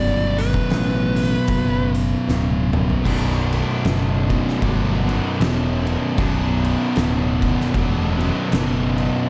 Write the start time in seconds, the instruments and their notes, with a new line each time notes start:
Already playing: picked electric bass G1, distorted electric guitar B1 F#2 B2, lead electric guitar D5
0.38 lead electric guitar B4, open hi-hat
0.54 kick
0.70 picked electric bass A1, snare, open hi-hat
1.16 open hi-hat
1.48 picked electric bass F#1, kick, open hi-hat
1.95 open hi-hat
2.28 picked electric bass D1, snare
2.50 high tom
2.72 distorted electric guitar B1 F#2 B2, mid tom
2.90 floor tom
3.04 picked electric bass B0, overdriven electric guitar B1 F#2 B2 F#3 D4, distorted electric guitar B1 F#2 B2, kick, crash
3.53 crash
3.85 picked electric bass F#1, snare, crash
4.29 distorted electric guitar B1 F#2 B2, kick, crash
4.48 snare
4.61 picked electric bass G1, overdriven electric guitar B1 F#2 B2 F#3 D4, kick, crash
5.06 distorted electric guitar B1 F#2 B2, crash
5.38 picked electric bass E1, distorted electric guitar B1 F#2 B2, crash
5.42 snare
5.87 crash
6.16 picked electric bass B0, distorted electric guitar B1 F#2 B2, overdriven electric guitar B1 F#2 B2 F#3 D4, kick, crash
6.64 crash
6.96 picked electric bass D1, snare, crash
7.41 distorted electric guitar B1 F#2 B2, kick, crash
7.60 snare
7.73 picked electric bass E1, overdriven electric guitar B1 F#2 B2 F#3 D4, kick, crash
8.18 distorted electric guitar F#2 B2, crash
8.22 distorted electric guitar B1
8.49 picked electric bass F#1, distorted electric guitar B1 F#2 B2, snare, crash
8.98 crash